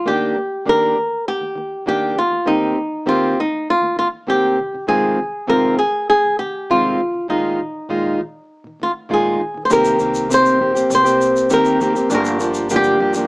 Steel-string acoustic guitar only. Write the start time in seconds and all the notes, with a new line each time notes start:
0.06 D#3 A#3 D4 G4
0.36 D#3 A#3
0.66 D#3 A#3 D4 G4
0.95 D#3 A#3
1.41 D#3 A#3
1.55 D#3 A#3
1.86 D#3 A#3 D4 G4
2.15 D#3 A#3
2.31 D#3 A#3
2.46 D#3 A#3 C4 G4
2.75 D#3
3.06 D#3 A#3 C4 G4
3.37 D#3
3.81 D#3 A#3
3.96 D#3 A#3
4.27 D#3 A#3 C4 G4
4.58 F2 C3 D#3
4.73 F2 C3 D#3
4.87 F2 C3 D#3 G#3 C4 F4
5.18 F2 C3 D#3
5.47 F2 C3 D#3 G#3 C4 F4
5.78 F2
6.24 F2 C3 D#3
6.39 F2 C3 D#3
6.70 F2 C3 D#3 G#3 C4 F4
6.98 F2 C3
7.13 F2 C3 D#3
7.28 A#2 D#3 G#3 D#4 F4
7.59 A#2 D#3
7.89 A#2 D#3 G#3 D#4 F4
8.19 A#2 D#3
8.64 A#2 D#3
8.80 A#2 D#3
9.09 A#2 D#3 G#3 D#4 F4
9.39 A#2 D#3
9.54 A#2 D#3
9.70 C3 D#3 A#3 C4 G4
9.99 D#3 A#3 C4 G4
10.29 C3 D#3 A#3 C4 G4
10.59 D#3 A#3 C4 G4
10.75 A#3 C4 G4
11.04 A#3 C4 G4
11.50 C3 D#3 A#3 C4 G4
11.80 D#3 A#3 C4 G4
11.95 A#3 C4 G4
12.10 G2 D3 F3 A#3 D4 G4
12.39 F3 A#3 D4 G4
12.70 G2 D3 F3 A#3 D4 G4
13.00 F3 A#3 D4 G4
13.15 F3 A#3 D4 G4